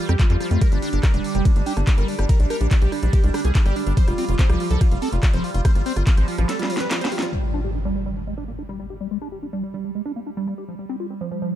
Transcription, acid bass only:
0.09 C4
0.19 A3
0.30 F3
0.40 F3
0.51 A3
0.61 G3
0.72 G#3
0.82 D4
0.93 G4
1.03 D4
1.14 G3
1.24 G3
1.35 G3
1.45 G#3
1.56 G#3
1.66 D4
1.77 A#3
1.87 D4
1.98 G3
2.08 G3
2.19 G4
2.29 G3
2.40 G#3
2.50 D4
2.61 G4
2.71 D4
2.82 G3
2.92 G3
3.03 G3
3.13 G#3
3.24 G#3
3.34 D4
3.45 A#3
3.55 D4
3.66 G3
3.76 G3
3.87 G4
3.97 F3
4.08 G3
4.18 C4
4.29 F4
4.39 C4
4.50 F3
4.60 F3
4.71 F3
4.81 G3
4.91 G3
5.02 C4
5.12 A3
5.23 C4
5.33 F3
5.44 F3
5.54 F4
5.65 F3
5.75 G3
5.86 C4
5.96 F4
6.07 C4
6.17 F3
6.28 F3
6.38 F3
6.49 G3
6.59 G3
6.70 F3
6.80 F3
6.91 F3
7.01 F4
7.12 G4
7.22 F3
7.33 G3
7.43 G#3
7.54 D4
7.64 G4
7.75 D4
7.85 G3
7.96 G3
8.06 G3
8.17 G#3
8.27 G#3
8.38 D4
8.48 A#3
8.59 D4
8.69 G3
8.80 G3
8.90 G4
9.01 G3
9.11 G#3
9.22 D4
9.32 G4
9.43 D4
9.53 G3
9.64 G3
9.74 G3
9.85 G#3
9.95 G#3
10.06 D4
10.16 A#3
10.27 D4
10.37 G3
10.47 G3
10.58 G4
10.68 F3
10.79 G3
10.89 C4
11.00 F4
11.10 C4
11.21 F3
11.31 F3
11.42 F3

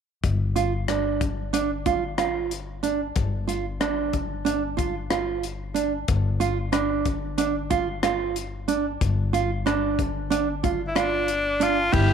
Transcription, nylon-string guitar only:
0.56 F4
0.88 D4
1.53 D4
1.86 F4
2.18 F4
2.83 D4
3.48 F4
3.80 D4
4.45 D4
4.77 F4
5.10 F4
5.74 D4
6.40 F4
6.72 D4
7.38 D4
7.70 F4
8.03 F4
8.68 D4
9.33 F4
9.66 D4
10.30 D4
10.63 F4
10.95 F4
11.60 D4
11.92 E4

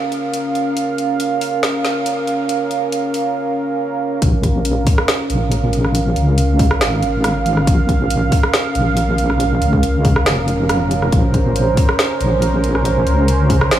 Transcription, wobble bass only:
4.22 A#1
5.30 A#1
6.16 C#2
6.81 G#1
7.67 A#1
8.75 A#1
9.61 C#2
10.26 F1
11.12 A#1
12.20 A#1
13.07 C#2
13.71 G#1

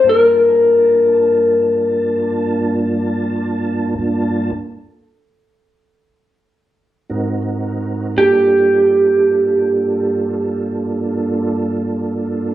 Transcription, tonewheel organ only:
0.04 G2 A#3 D4 F4 A5
3.98 G2 A#3 D4 F4 A5
7.10 G#2 C4 D#4 F#4 A#4
8.17 G2 A#3 D4 F4 A4

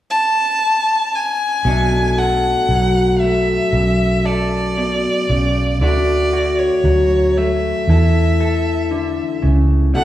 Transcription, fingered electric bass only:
1.65 B1
2.69 B1
3.73 B1
5.29 B1
5.81 D2
6.84 D2
7.87 E2
9.43 C#2
9.94 B1

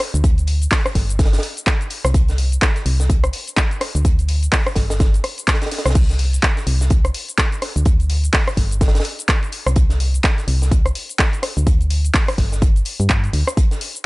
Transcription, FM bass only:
0.14 D2
0.95 G1
2.05 C2
2.86 C2
3.95 D2
4.76 G1
5.86 C2
6.67 C2
7.76 D2
8.57 G1
9.66 C2
10.48 C2
11.57 D2
12.38 G1
13.00 G2
13.33 D2

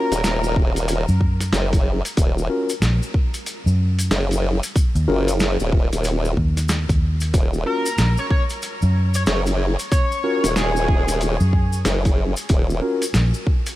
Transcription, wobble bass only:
0.12 D#1
1.53 F#1
2.17 D#1
4.11 F#1
5.08 F#1
5.60 D#1
5.93 D#1
7.34 D#1
9.27 F#1
10.44 D#1
11.85 F#1
12.50 D#1

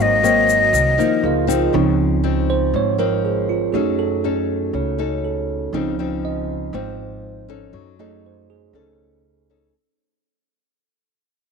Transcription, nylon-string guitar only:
Already playing: G#2 F#3 A#3 C4
0.23 F#3 A#3 C4
0.73 D#3
0.98 F3 A#3 D#4
1.47 F3 C4 D#4
1.73 C#3
2.24 F3 C4 D#4
2.74 G#2
2.98 F3 C4 D#4
3.74 F#3 C#4 D#4 A4
4.24 C#4 D#4 A4
4.74 C#3
4.98 C#4 D#4 A4
5.74 C#3 F3 C4 D#4
5.99 F3 C4 D#4
6.74 G#2 F3 C4 D#4
7.48 C#4 D#4 A4
7.73 F#3
7.99 C#4 D#4 A4
8.74 C#3 C#4 D#4 A4
9.50 C#4 D#4 A4

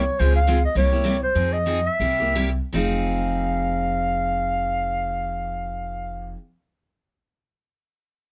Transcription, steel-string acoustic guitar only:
0.19 C#3 G#3 C4 F4 G#4
0.47 C#3 G#3 C4 F4 G#4
0.76 C3 G3 A#3 E4 G4
0.93 A#3 E4 G4
1.04 C3 G3 A#3 E4 G4
1.35 F3 C4 D#4 G#4
1.66 F3 C4 D#4 G#4
2.00 C3 G3 A#3 E4 G4
2.20 A#3 E4 G4
2.35 C3 G3 A#3 E4 G4
2.73 F3 C4 D#4 G#4

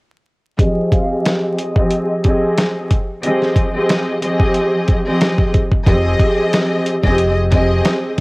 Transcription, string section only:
0.59 F3 C4 G4 G#4 D#5
1.75 F3 C4 G4 G#4 D#5
2.24 F3 C4 G4 G#4 D#5
3.23 F3 C4 G4 G#4 D#5
3.75 F3 C4 G4 G#4 D#5
4.22 F3 C4 G4 G#4 D#5
5.06 F3 C4 G4 G#4 D#5
5.86 F3 C4 G4 G#4 D#5
7.03 F3 C4 G4 G#4 D#5
7.51 F3 C4 G4 G#4 D#5

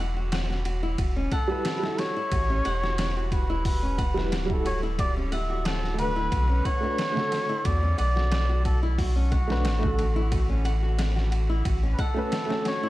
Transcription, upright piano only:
Already playing: F#3 C#4 F#4
1.48 G3 E4 B4
1.79 G3 E4
1.87 A4
4.14 G3 E4 B4
4.46 G3 E4
4.53 A4
5.94 A3
5.98 D3 B4
6.81 A3 D4
6.85 B4
7.12 D3 A3
7.20 A4
9.48 A3 D4
9.52 B4
9.79 A3
9.83 D3 A4
12.14 A3 C#4 B4
12.46 A3 C#4
12.54 A4

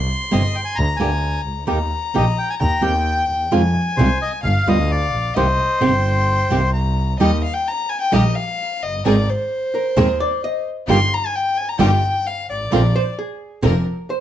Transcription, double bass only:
0.32 G1
0.78 D2
1.01 D2
1.46 C#2
1.69 D#2
2.15 A#1
2.60 D#2
2.84 D#2
3.29 D#2
3.52 F2
3.97 C2
4.44 G1
4.67 D2
5.13 A#1
5.36 C2
5.82 G1
6.51 C2
7.21 D#2
8.13 A#1
8.83 F#1
9.06 G#1
9.97 D#2
10.88 G1
11.79 G1
12.49 G#1
12.71 A#1
13.64 F1

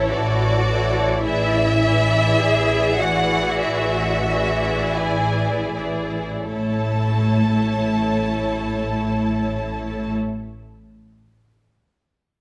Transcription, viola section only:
Already playing: E3 E4
0.67 E3 E4
1.24 E3 E4
1.81 E3 E4
3.01 E3 E4
4.30 E3 E4
5.76 E3 E4
6.51 A3 E4

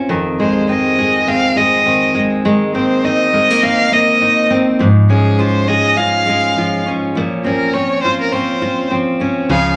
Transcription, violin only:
0.40 C5
0.70 D#5
1.28 F5
1.57 D#5
2.75 C5
3.05 D#5
3.64 F5
3.93 D#5
5.10 G#4
5.39 C5
5.68 D#5
5.97 F5
7.45 A#4
7.74 C#5
8.03 C5
8.21 A#4
8.32 C5
9.50 F5

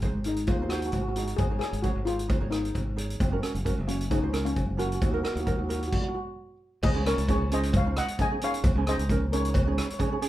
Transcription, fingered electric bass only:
Already playing: G#1
0.14 G#1
0.60 D#2
0.93 G#1
1.38 G#1
1.73 G#1
1.95 G#1
2.41 G#1
2.75 G#1
3.20 F#1
3.55 F#1
3.78 F#1
4.22 C#2
4.56 F#1
5.01 D#2
5.36 D#2
5.59 D#2
6.83 C#2
6.94 C#2
7.18 C#2
8.64 C#2
8.75 C#2
8.98 C#2

